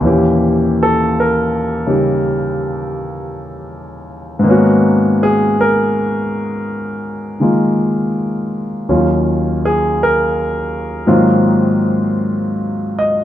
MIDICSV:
0, 0, Header, 1, 2, 480
1, 0, Start_track
1, 0, Key_signature, -6, "minor"
1, 0, Tempo, 1104972
1, 15, Time_signature, 4, 2, 24, 8
1, 5751, End_track
2, 0, Start_track
2, 0, Title_t, "Grand piano"
2, 0, Program_c, 0, 0
2, 0, Control_c, 0, 64, 127
2, 2, Note_on_c, 0, 39, 55
2, 10, Note_on_c, 0, 46, 46
2, 16, Note_on_c, 0, 52, 49
2, 20, Control_c, 0, 64, 0
2, 21, Note_on_c, 0, 61, 46
2, 29, Note_on_c, 0, 67, 57
2, 89, Control_c, 0, 64, 127
2, 359, Note_on_c, 0, 69, 75
2, 501, Note_off_c, 0, 69, 0
2, 521, Note_on_c, 0, 70, 71
2, 810, Note_on_c, 0, 49, 41
2, 814, Note_on_c, 0, 55, 34
2, 815, Note_off_c, 0, 67, 0
2, 819, Note_on_c, 0, 63, 33
2, 822, Note_on_c, 0, 67, 41
2, 824, Note_off_c, 0, 70, 0
2, 1909, Note_on_c, 0, 44, 60
2, 1921, Note_on_c, 0, 51, 48
2, 1929, Note_on_c, 0, 58, 57
2, 1930, Note_off_c, 0, 39, 0
2, 1933, Note_off_c, 0, 49, 0
2, 1934, Note_off_c, 0, 46, 0
2, 1935, Note_off_c, 0, 55, 0
2, 1937, Note_off_c, 0, 52, 0
2, 1937, Note_off_c, 0, 63, 0
2, 1938, Note_on_c, 0, 59, 52
2, 1939, Note_off_c, 0, 61, 0
2, 1939, Note_off_c, 0, 67, 0
2, 1941, Control_c, 0, 64, 0
2, 1949, Note_on_c, 0, 61, 57
2, 1957, Note_on_c, 0, 66, 63
2, 2009, Control_c, 0, 64, 127
2, 2272, Note_on_c, 0, 68, 81
2, 2417, Note_off_c, 0, 68, 0
2, 2435, Note_on_c, 0, 70, 75
2, 2740, Note_off_c, 0, 70, 0
2, 3208, Note_off_c, 0, 51, 0
2, 3214, Note_on_c, 0, 51, 37
2, 3218, Note_off_c, 0, 58, 0
2, 3220, Note_on_c, 0, 56, 40
2, 3224, Note_on_c, 0, 58, 41
2, 3226, Note_on_c, 0, 65, 40
2, 3842, Note_off_c, 0, 44, 0
2, 3853, Note_off_c, 0, 51, 0
2, 3856, Note_off_c, 0, 56, 0
2, 3856, Note_off_c, 0, 59, 0
2, 3857, Note_off_c, 0, 61, 0
2, 3858, Note_off_c, 0, 58, 0
2, 3858, Note_off_c, 0, 65, 0
2, 3860, Control_c, 0, 64, 0
2, 3861, Note_on_c, 0, 39, 46
2, 3862, Note_on_c, 0, 51, 41
2, 3862, Note_on_c, 0, 54, 44
2, 3863, Note_on_c, 0, 61, 43
2, 3866, Note_off_c, 0, 66, 0
2, 3868, Note_on_c, 0, 65, 49
2, 3929, Control_c, 0, 64, 127
2, 4194, Note_on_c, 0, 68, 75
2, 4338, Note_off_c, 0, 68, 0
2, 4358, Note_on_c, 0, 70, 74
2, 4546, Note_off_c, 0, 70, 0
2, 4802, Note_off_c, 0, 51, 0
2, 4803, Note_off_c, 0, 54, 0
2, 4808, Note_on_c, 0, 44, 56
2, 4808, Note_on_c, 0, 51, 55
2, 4810, Note_off_c, 0, 65, 0
2, 4810, Note_on_c, 0, 54, 52
2, 4811, Note_on_c, 0, 58, 51
2, 4812, Note_on_c, 0, 60, 49
2, 4816, Note_on_c, 0, 65, 61
2, 4819, Note_off_c, 0, 39, 0
2, 4820, Note_off_c, 0, 61, 0
2, 4822, Control_c, 0, 64, 0
2, 4889, Control_c, 0, 64, 127
2, 5641, Note_on_c, 0, 75, 69
2, 5751, Note_off_c, 0, 44, 0
2, 5751, Note_off_c, 0, 51, 0
2, 5751, Note_off_c, 0, 54, 0
2, 5751, Note_off_c, 0, 58, 0
2, 5751, Note_off_c, 0, 60, 0
2, 5751, Note_off_c, 0, 65, 0
2, 5751, Note_off_c, 0, 75, 0
2, 5751, End_track
0, 0, End_of_file